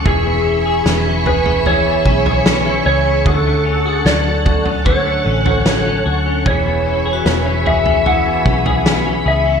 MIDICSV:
0, 0, Header, 1, 7, 480
1, 0, Start_track
1, 0, Tempo, 800000
1, 35, Time_signature, 4, 2, 24, 8
1, 5760, End_track
2, 0, Start_track
2, 0, Title_t, "String machine"
2, 0, Program_c, 0, 50
2, 0, Note_on_c, 0, 85, 83
2, 31, Note_on_c, 0, 68, 69
2, 31, Note_on_c, 0, 76, 64
2, 32, Note_on_c, 0, 83, 68
2, 1934, Note_off_c, 0, 68, 0
2, 1934, Note_off_c, 0, 76, 0
2, 1935, Note_off_c, 0, 83, 0
2, 1951, Note_on_c, 0, 69, 77
2, 1952, Note_on_c, 0, 78, 68
2, 1952, Note_on_c, 0, 81, 80
2, 3854, Note_off_c, 0, 69, 0
2, 3854, Note_off_c, 0, 78, 0
2, 3854, Note_off_c, 0, 81, 0
2, 3878, Note_on_c, 0, 68, 79
2, 3879, Note_on_c, 0, 76, 64
2, 3880, Note_on_c, 0, 83, 65
2, 5760, Note_off_c, 0, 68, 0
2, 5760, Note_off_c, 0, 76, 0
2, 5760, Note_off_c, 0, 83, 0
2, 5760, Note_off_c, 0, 85, 0
2, 5760, End_track
3, 0, Start_track
3, 0, Title_t, "Electric slide guitar"
3, 0, Program_c, 1, 29
3, 42, Note_on_c, 1, 68, 92
3, 495, Note_off_c, 1, 68, 0
3, 763, Note_on_c, 1, 71, 72
3, 998, Note_off_c, 1, 71, 0
3, 1001, Note_on_c, 1, 73, 81
3, 1710, Note_off_c, 1, 73, 0
3, 1717, Note_on_c, 1, 73, 81
3, 1960, Note_on_c, 1, 69, 84
3, 1963, Note_off_c, 1, 73, 0
3, 2296, Note_off_c, 1, 69, 0
3, 2296, Note_on_c, 1, 68, 84
3, 2439, Note_on_c, 1, 74, 86
3, 2452, Note_off_c, 1, 68, 0
3, 2917, Note_off_c, 1, 74, 0
3, 2919, Note_on_c, 1, 73, 75
3, 3613, Note_off_c, 1, 73, 0
3, 3884, Note_on_c, 1, 73, 73
3, 4604, Note_on_c, 1, 76, 84
3, 4621, Note_off_c, 1, 73, 0
3, 4842, Note_off_c, 1, 76, 0
3, 4844, Note_on_c, 1, 78, 90
3, 5565, Note_off_c, 1, 78, 0
3, 5567, Note_on_c, 1, 76, 82
3, 5760, Note_off_c, 1, 76, 0
3, 5760, End_track
4, 0, Start_track
4, 0, Title_t, "Vibraphone"
4, 0, Program_c, 2, 11
4, 4278, Note_on_c, 2, 66, 54
4, 5577, Note_off_c, 2, 66, 0
4, 5760, End_track
5, 0, Start_track
5, 0, Title_t, "Clean electric guitar"
5, 0, Program_c, 3, 27
5, 0, Note_on_c, 3, 50, 75
5, 0, Note_on_c, 3, 57, 47
5, 0, Note_on_c, 3, 61, 49
5, 34, Note_on_c, 3, 52, 67
5, 37, Note_on_c, 3, 68, 55
5, 83, Note_off_c, 3, 50, 0
5, 83, Note_off_c, 3, 57, 0
5, 154, Note_on_c, 3, 59, 51
5, 172, Note_off_c, 3, 61, 0
5, 275, Note_on_c, 3, 61, 51
5, 387, Note_off_c, 3, 68, 0
5, 395, Note_on_c, 3, 68, 59
5, 508, Note_off_c, 3, 59, 0
5, 515, Note_on_c, 3, 59, 65
5, 633, Note_off_c, 3, 61, 0
5, 635, Note_on_c, 3, 61, 52
5, 749, Note_off_c, 3, 68, 0
5, 756, Note_on_c, 3, 68, 58
5, 871, Note_off_c, 3, 61, 0
5, 873, Note_on_c, 3, 61, 48
5, 988, Note_off_c, 3, 52, 0
5, 991, Note_off_c, 3, 68, 0
5, 995, Note_on_c, 3, 52, 74
5, 998, Note_on_c, 3, 68, 62
5, 1107, Note_off_c, 3, 59, 0
5, 1114, Note_on_c, 3, 59, 49
5, 1233, Note_off_c, 3, 61, 0
5, 1235, Note_on_c, 3, 61, 58
5, 1348, Note_off_c, 3, 68, 0
5, 1356, Note_on_c, 3, 68, 57
5, 1467, Note_off_c, 3, 59, 0
5, 1474, Note_on_c, 3, 59, 57
5, 1593, Note_off_c, 3, 61, 0
5, 1596, Note_on_c, 3, 61, 51
5, 1707, Note_off_c, 3, 68, 0
5, 1715, Note_on_c, 3, 68, 58
5, 1833, Note_off_c, 3, 61, 0
5, 1835, Note_on_c, 3, 61, 51
5, 1955, Note_off_c, 3, 68, 0
5, 1955, Note_on_c, 3, 50, 69
5, 1958, Note_on_c, 3, 66, 57
5, 2003, Note_off_c, 3, 52, 0
5, 2003, Note_off_c, 3, 59, 0
5, 2076, Note_on_c, 3, 57, 54
5, 2190, Note_off_c, 3, 61, 0
5, 2192, Note_on_c, 3, 61, 53
5, 2306, Note_off_c, 3, 66, 0
5, 2313, Note_on_c, 3, 66, 57
5, 2432, Note_on_c, 3, 54, 59
5, 2665, Note_off_c, 3, 66, 0
5, 2672, Note_on_c, 3, 66, 56
5, 2790, Note_off_c, 3, 61, 0
5, 2793, Note_on_c, 3, 61, 46
5, 2903, Note_off_c, 3, 50, 0
5, 2907, Note_off_c, 3, 66, 0
5, 2910, Note_on_c, 3, 50, 75
5, 2914, Note_on_c, 3, 66, 65
5, 3026, Note_off_c, 3, 57, 0
5, 3033, Note_on_c, 3, 57, 48
5, 3151, Note_off_c, 3, 61, 0
5, 3153, Note_on_c, 3, 61, 54
5, 3266, Note_off_c, 3, 66, 0
5, 3273, Note_on_c, 3, 66, 59
5, 3386, Note_off_c, 3, 54, 0
5, 3393, Note_on_c, 3, 54, 62
5, 3511, Note_off_c, 3, 61, 0
5, 3514, Note_on_c, 3, 61, 56
5, 3627, Note_off_c, 3, 66, 0
5, 3634, Note_on_c, 3, 66, 55
5, 3753, Note_off_c, 3, 61, 0
5, 3755, Note_on_c, 3, 61, 50
5, 3870, Note_off_c, 3, 54, 0
5, 3872, Note_on_c, 3, 52, 72
5, 3873, Note_off_c, 3, 66, 0
5, 3876, Note_on_c, 3, 68, 59
5, 3921, Note_off_c, 3, 50, 0
5, 3922, Note_off_c, 3, 57, 0
5, 3994, Note_on_c, 3, 59, 52
5, 4012, Note_off_c, 3, 61, 0
5, 4114, Note_on_c, 3, 61, 50
5, 4226, Note_off_c, 3, 68, 0
5, 4233, Note_on_c, 3, 68, 59
5, 4347, Note_off_c, 3, 59, 0
5, 4354, Note_on_c, 3, 59, 64
5, 4472, Note_off_c, 3, 61, 0
5, 4474, Note_on_c, 3, 61, 51
5, 4586, Note_off_c, 3, 68, 0
5, 4593, Note_on_c, 3, 68, 58
5, 4710, Note_off_c, 3, 61, 0
5, 4713, Note_on_c, 3, 61, 48
5, 4826, Note_off_c, 3, 52, 0
5, 4830, Note_off_c, 3, 68, 0
5, 4834, Note_on_c, 3, 52, 75
5, 4837, Note_on_c, 3, 68, 61
5, 4948, Note_off_c, 3, 59, 0
5, 4956, Note_on_c, 3, 59, 48
5, 5073, Note_off_c, 3, 61, 0
5, 5076, Note_on_c, 3, 61, 55
5, 5189, Note_off_c, 3, 68, 0
5, 5196, Note_on_c, 3, 68, 59
5, 5308, Note_off_c, 3, 59, 0
5, 5316, Note_on_c, 3, 59, 63
5, 5433, Note_off_c, 3, 61, 0
5, 5436, Note_on_c, 3, 61, 54
5, 5548, Note_off_c, 3, 68, 0
5, 5555, Note_on_c, 3, 68, 54
5, 5671, Note_off_c, 3, 61, 0
5, 5674, Note_on_c, 3, 61, 50
5, 5760, Note_off_c, 3, 52, 0
5, 5760, Note_off_c, 3, 59, 0
5, 5760, Note_off_c, 3, 61, 0
5, 5760, Note_off_c, 3, 68, 0
5, 5760, End_track
6, 0, Start_track
6, 0, Title_t, "Fingered electric bass"
6, 0, Program_c, 4, 33
6, 35, Note_on_c, 4, 28, 82
6, 491, Note_off_c, 4, 28, 0
6, 513, Note_on_c, 4, 28, 90
6, 1210, Note_off_c, 4, 28, 0
6, 1232, Note_on_c, 4, 35, 75
6, 1690, Note_off_c, 4, 35, 0
6, 1714, Note_on_c, 4, 37, 76
6, 1943, Note_off_c, 4, 37, 0
6, 1955, Note_on_c, 4, 38, 87
6, 2411, Note_off_c, 4, 38, 0
6, 2431, Note_on_c, 4, 38, 88
6, 3129, Note_off_c, 4, 38, 0
6, 3153, Note_on_c, 4, 33, 72
6, 3610, Note_off_c, 4, 33, 0
6, 3634, Note_on_c, 4, 38, 75
6, 3863, Note_off_c, 4, 38, 0
6, 3875, Note_on_c, 4, 28, 86
6, 4331, Note_off_c, 4, 28, 0
6, 4354, Note_on_c, 4, 28, 84
6, 5050, Note_off_c, 4, 28, 0
6, 5074, Note_on_c, 4, 35, 71
6, 5531, Note_off_c, 4, 35, 0
6, 5554, Note_on_c, 4, 37, 75
6, 5760, Note_off_c, 4, 37, 0
6, 5760, End_track
7, 0, Start_track
7, 0, Title_t, "Drums"
7, 33, Note_on_c, 9, 43, 89
7, 34, Note_on_c, 9, 36, 98
7, 93, Note_off_c, 9, 43, 0
7, 94, Note_off_c, 9, 36, 0
7, 515, Note_on_c, 9, 38, 85
7, 575, Note_off_c, 9, 38, 0
7, 756, Note_on_c, 9, 43, 59
7, 816, Note_off_c, 9, 43, 0
7, 874, Note_on_c, 9, 43, 56
7, 934, Note_off_c, 9, 43, 0
7, 995, Note_on_c, 9, 43, 55
7, 1055, Note_off_c, 9, 43, 0
7, 1233, Note_on_c, 9, 36, 85
7, 1293, Note_off_c, 9, 36, 0
7, 1356, Note_on_c, 9, 43, 59
7, 1416, Note_off_c, 9, 43, 0
7, 1475, Note_on_c, 9, 38, 104
7, 1535, Note_off_c, 9, 38, 0
7, 1955, Note_on_c, 9, 36, 94
7, 1955, Note_on_c, 9, 43, 94
7, 2015, Note_off_c, 9, 36, 0
7, 2015, Note_off_c, 9, 43, 0
7, 2435, Note_on_c, 9, 38, 89
7, 2495, Note_off_c, 9, 38, 0
7, 2674, Note_on_c, 9, 43, 63
7, 2676, Note_on_c, 9, 36, 84
7, 2734, Note_off_c, 9, 43, 0
7, 2736, Note_off_c, 9, 36, 0
7, 2794, Note_on_c, 9, 43, 55
7, 2854, Note_off_c, 9, 43, 0
7, 2913, Note_on_c, 9, 43, 56
7, 2916, Note_on_c, 9, 36, 83
7, 2973, Note_off_c, 9, 43, 0
7, 2976, Note_off_c, 9, 36, 0
7, 3274, Note_on_c, 9, 43, 67
7, 3334, Note_off_c, 9, 43, 0
7, 3395, Note_on_c, 9, 38, 101
7, 3455, Note_off_c, 9, 38, 0
7, 3876, Note_on_c, 9, 36, 91
7, 3876, Note_on_c, 9, 43, 97
7, 3936, Note_off_c, 9, 36, 0
7, 3936, Note_off_c, 9, 43, 0
7, 4356, Note_on_c, 9, 38, 98
7, 4416, Note_off_c, 9, 38, 0
7, 4598, Note_on_c, 9, 43, 58
7, 4658, Note_off_c, 9, 43, 0
7, 4714, Note_on_c, 9, 43, 60
7, 4774, Note_off_c, 9, 43, 0
7, 4836, Note_on_c, 9, 43, 56
7, 4896, Note_off_c, 9, 43, 0
7, 5074, Note_on_c, 9, 36, 85
7, 5134, Note_off_c, 9, 36, 0
7, 5195, Note_on_c, 9, 43, 63
7, 5255, Note_off_c, 9, 43, 0
7, 5316, Note_on_c, 9, 38, 103
7, 5376, Note_off_c, 9, 38, 0
7, 5760, End_track
0, 0, End_of_file